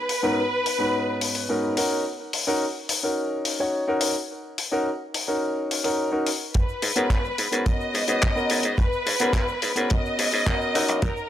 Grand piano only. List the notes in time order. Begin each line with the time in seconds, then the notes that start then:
0.23 G#2 B3 C#4 D#4 F#4 A#4
0.78 G#2 B3 C#4 D#4 F#4 B4
1.49 G#2 B3 C#4 D#4 F#4 A#4
1.77 C#4 D#4 F#4 A#4
2.47 C#4 D#4 F#4 A#4
3.03 C#4 D#4 F#4 A#4
3.59 C#4 D#4 F#4 C#5
3.87 C#4 D#4 F#4 A#4
4.71 C#4 D#4 F#4 A#4
5.27 C#4 D#4 F#4 A#4
5.84 C#4 D#4 F#4 A#4
6.12 C#4 D#4 F#4 A#4
6.96 B3 C#4 F#4 A#4
7.51 B3 C#4 F#4 A#4
8.08 B3 C#4 F#4 B4
8.36 B3 C#4 F#4 A#4
9.20 B3 C#4 F#4 A#4
9.75 B3 C#4 F#4 A#4
10.46 B3 C#4 F#4 A#4
10.74 C#4 D#4 F#4 A#4